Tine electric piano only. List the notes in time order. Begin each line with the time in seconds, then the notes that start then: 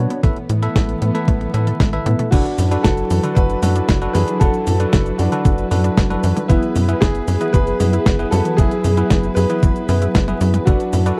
Already playing: D4 F#4 B4 C#5
0.23 E4 A4 B4 E5
0.62 E4 A4 B4 E5
1.15 E4 A4 B4 E5
1.54 E4 A4 B4 E5
1.93 E4 A4 B4 E5
2.32 D4 F#4 A4 B4
2.71 D4 F#4 A4 B4
3.23 D4 F#4 A4 B4
3.63 D4 F#4 A4 B4
4.02 D4 F#4 A4 B4
4.41 D4 F#4 A4 B4
4.80 D4 F#4 A4 B4
5.32 D4 F#4 A4 B4
5.71 D4 F#4 A4 B4
6.10 D4 F#4 A4 B4
6.49 B3 E4 G#4 B4
6.88 B3 E4 G#4 B4
7.41 B3 E4 G#4 B4
7.80 B3 E4 G#4 B4
8.19 B3 E4 G#4 B4
8.58 B3 E4 G#4 B4
8.97 B3 E4 G#4 B4
9.50 B3 E4 G#4 B4
9.89 B3 E4 G#4 B4
10.28 B3 E4 G#4 B4
10.67 D4 F#4 A4 B4
11.06 D4 F#4 A4 B4